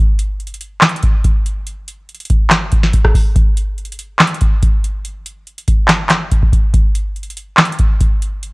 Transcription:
0.19 closed hi-hat
0.40 closed hi-hat
0.47 closed hi-hat
0.54 closed hi-hat
0.61 closed hi-hat
0.81 snare, clap, closed hi-hat
0.89 closed hi-hat
0.96 closed hi-hat
1.03 kick, closed hi-hat
1.24 kick, closed hi-hat
1.46 closed hi-hat
1.67 closed hi-hat
1.88 closed hi-hat
2.09 closed hi-hat
2.14 closed hi-hat
2.20 closed hi-hat
2.25 closed hi-hat
2.30 kick, closed hi-hat
2.50 snare, clap, closed hi-hat
2.72 kick, closed hi-hat
2.83 snare
2.93 kick, closed hi-hat
3.05 kick, cross-stick
3.15 kick, open hi-hat
3.36 kick, closed hi-hat
3.57 closed hi-hat
3.78 closed hi-hat
3.85 closed hi-hat
3.92 closed hi-hat
3.99 closed hi-hat
4.19 snare, clap, closed hi-hat
4.27 closed hi-hat
4.34 closed hi-hat
4.41 kick, closed hi-hat
4.63 kick, closed hi-hat
4.84 closed hi-hat
5.05 closed hi-hat
5.26 closed hi-hat
5.47 closed hi-hat
5.58 closed hi-hat
5.68 kick, closed hi-hat
5.88 snare, clap, closed hi-hat
6.09 snare, clap, closed hi-hat
6.32 kick, closed hi-hat
6.43 kick
6.53 kick, closed hi-hat
6.74 kick, closed hi-hat
6.95 closed hi-hat
7.16 closed hi-hat
7.23 closed hi-hat
7.30 closed hi-hat
7.37 closed hi-hat
7.57 snare, clap, closed hi-hat
7.65 closed hi-hat
7.72 closed hi-hat
7.79 kick, closed hi-hat
8.01 kick, closed hi-hat
8.22 closed hi-hat
8.43 closed hi-hat

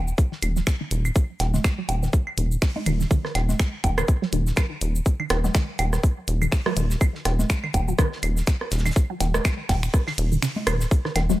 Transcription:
Already playing: D#1
0.08 shaker
0.18 kick, shaker
0.32 D#3, snare
0.42 D#1, closed hi-hat, claves, shaker
0.56 F#3, snare, shaker
0.67 finger snap, kick, snare, shaker
0.81 D#3
0.91 D#1, closed hi-hat, shaker
1.05 claves, shaker
1.15 kick, shaker
1.40 D#1, snare, closed hi-hat, low woodblock, shaker
1.54 D#3, snare, low conga, shaker
1.64 finger snap, kick, snare, claves, shaker
1.78 F#3
1.89 D#1, closed hi-hat, low woodblock, shaker
2.03 D#3, snare, shaker
2.13 kick, shaker
2.27 claves
2.38 D#1 A#2, closed hi-hat, shaker
2.52 shaker
2.62 D#4, finger snap, kick, snare, open hi-hat, shaker
2.76 D#4, low conga
2.86 D#1 D#3, closed hi-hat, claves, shaker
3.00 D#3, snare, shaker
3.11 D#3, kick, shaker
3.25 cross-stick, snare
3.35 D#1, snare, closed hi-hat, claves, low woodblock, shaker
3.49 snare, low conga, shaker
3.60 finger snap, kick, snare, shaker
3.84 D#1, kick, closed hi-hat, low woodblock, shaker
3.98 D#3, cross-stick, claves, shaker
4.08 kick, shaker
4.22 F#3, snare
4.33 D#1 D#3, closed hi-hat, shaker
4.47 snare, shaker
4.56 finger snap, kick, cross-stick, snare, claves, shaker
4.81 D#1, closed hi-hat, shaker
4.95 shaker
5.06 kick, shaker
5.20 D#3, claves
5.30 D#1, cross-stick, snare, closed hi-hat, low woodblock, shaker
5.44 F#3, snare, low conga, shaker
5.54 D#3, finger snap, kick, snare, shaker
5.79 D#1, closed hi-hat, claves, low woodblock, shaker
5.93 cross-stick, snare, shaker
6.03 kick, shaker
6.28 D#1, closed hi-hat, shaker
6.42 D#3, claves, shaker
6.52 finger snap, kick, snare, open hi-hat, shaker
6.66 F#3, cross-stick, low conga
6.76 D#1 D#3, closed hi-hat, shaker
6.90 snare, shaker
7.01 kick, claves, shaker
7.15 snare
7.25 D#1, cross-stick, snare, closed hi-hat, low woodblock, shaker
7.39 snare, low conga, shaker
7.50 finger snap, kick, snare, shaker
7.64 D#3, claves
7.74 D#1, kick, closed hi-hat, low woodblock, shaker
7.88 F#3, shaker
7.99 D#3, kick, cross-stick, shaker
8.13 snare
8.23 D#1, closed hi-hat, claves, shaker
8.37 snare, shaker
8.47 finger snap, kick, snare, shaker
8.61 cross-stick
8.71 D#1, snare, closed hi-hat, shaker
8.78 snare, shaker
8.85 D#3, snare, claves, shaker
8.91 snare, shaker
8.96 kick, shaker
9.10 F#3
9.20 D#1 D#3, snare, closed hi-hat, low woodblock, shaker
9.34 cross-stick, snare, low conga, shaker
9.45 finger snap, kick, snare, claves, shaker
9.69 D#1, kick, snare, closed hi-hat, open hi-hat, low woodblock, shaker
9.83 finger snap, shaker
9.93 kick, cross-stick, shaker
10.07 D#3, snare, open hi-hat, claves
10.18 D#1, closed hi-hat, shaker
10.32 D#3, shaker
10.42 C#3, finger snap, snare, open hi-hat, shaker
10.56 low conga
10.67 D#1, cross-stick, closed hi-hat, claves, shaker
10.80 snare, shaker
10.91 kick, shaker
11.05 D#3, cross-stick, snare
11.15 D#1 D#3, snare, closed hi-hat, claves, low woodblock, shaker
11.30 F#3, snare, low conga, shaker

